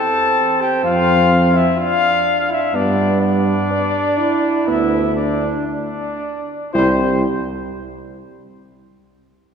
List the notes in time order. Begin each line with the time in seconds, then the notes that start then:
Already playing: C4 A4 A5
0.61 G4 G5
0.83 F2 C4 F4 F5
1.53 E4 E5
1.77 D4 F4 F5
2.50 E4 E5
2.74 G2 B3 D4 D5
3.21 D4 D5
3.72 D4
4.18 E4
4.66 D2 B3 E4 E5
5.16 D4 D5
5.67 D4 D5
6.73 C2 G3 E4 C5